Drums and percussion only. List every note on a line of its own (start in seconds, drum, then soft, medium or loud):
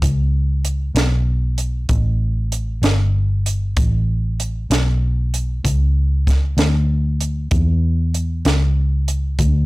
0.02 kick loud
0.02 closed hi-hat medium
0.65 closed hi-hat medium
0.96 snare medium
0.96 closed hi-hat medium
1.58 closed hi-hat medium
1.89 kick medium
1.89 closed hi-hat medium
2.52 closed hi-hat medium
2.83 snare medium
2.83 closed hi-hat medium
3.46 closed hi-hat medium
3.77 kick loud
3.77 closed hi-hat medium
4.40 closed hi-hat medium
4.71 snare loud
4.71 closed hi-hat medium
5.34 closed hi-hat medium
5.65 kick medium
5.65 closed hi-hat medium
6.27 kick medium
6.27 snare soft
6.27 closed hi-hat medium
6.58 snare medium
6.58 closed hi-hat medium
7.21 closed hi-hat medium
7.51 kick loud
7.51 closed hi-hat medium
8.14 closed hi-hat soft
8.45 snare medium
8.45 closed hi-hat medium
9.08 closed hi-hat medium
9.39 kick medium
9.39 closed hi-hat medium